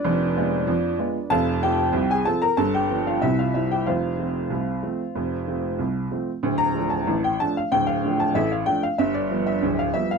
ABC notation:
X:1
M:2/4
L:1/16
Q:1/4=94
K:F
V:1 name="Upright piano"
[D_cd]8 | [Afa]2 [Gg]3 [_A_a] [=A=a] [Bb] | [Aa] [Gg]2 [Ff] [Ee] [Ff] [Ee] [Gg] | [Fcf]8- |
[Fcf]4 z4 | z b2 a2 g a f | g f2 a [Ae] f g f | e d2 e2 f e f |]
V:2 name="Upright piano" clef=bass
[F,,,F,,]2 [_A,_CF]2 [F,,F,]2 [A,CF]2 | [F,,,F,,]2 [F,CF]2 [C,,C,]2 [F,CF]2 | [G,,,G,,]2 [F,=B,D]2 [C,,C,]2 [G,C]2 | [F,,,F,,]2 [F,A,C]2 [C,,C,]2 [F,A,C]2 |
[F,,,F,,]2 [F,A,C]2 [C,,C,]2 [F,A,C]2 | [D,,,D,,]2 [F,A,D]2 [A,,,A,,]2 [F,A,D]2 | [D,,,D,,]2 [F,A,D]2 [A,,,A,,]2 [F,A,D]2 | [G,,,G,,]2 [F,G,=B,]2 [D,,,D,,]2 [F,G,B,]2 |]